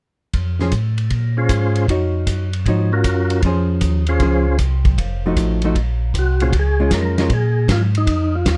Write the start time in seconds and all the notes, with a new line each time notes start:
0.33 F2, kick, ride
0.59 F3 C#4 G#4 C5, snare
0.72 A2, kick, hi-hat pedal, ride
0.98 ride
1.10 A#2, kick, ride
1.37 C#4 F4 G#4 C5
1.49 G#2, kick, hi-hat pedal, ride
1.76 ride
1.88 F2 D#4 F#4 C#5, kick, ride
2.27 F#2, kick, hi-hat pedal, ride
2.53 ride
2.66 G#2 F3 D#4 F#4 C#5, kick, ride
2.92 C#4 F4 F#4 A#4
3.04 F#2, kick, hi-hat pedal, ride
3.30 ride
3.42 F2 F3 C#4 G#4 C5, kick, ride
3.81 D#2, kick, hi-hat pedal, ride
4.07 C#4 F4 G#4 C5, ride
4.20 C#2 F3 C#4 G#4 C5, kick, ride
4.59 C2, kick, hi-hat pedal, ride
4.85 kick, ride
4.98 F1, kick, ride
5.26 F3 A3 D#4 F#4
5.37 A1, kick, hi-hat pedal, ride
5.62 F3 A3 D#4 F#4, ride
5.75 A#1, kick, ride
6.14 C2, kick, hi-hat pedal, ride
6.19 F#4
6.40 A#2 C#4 F4 G#4 C5, ride
6.53 C#2, kick, ride
6.59 G#4
6.80 G#3 C#4 F4
6.91 F2 A#4, kick, snare, hi-hat pedal, ride
7.18 G#3 C#4 F4, snare, ride
7.29 A#2, kick, ride
7.34 G#4
7.68 G#2 F4, kick, snare, hi-hat pedal, ride
7.95 D#4, ride
8.07 F2, kick, ride
8.35 F4
8.46 D#2, kick, snare, hi-hat pedal, ride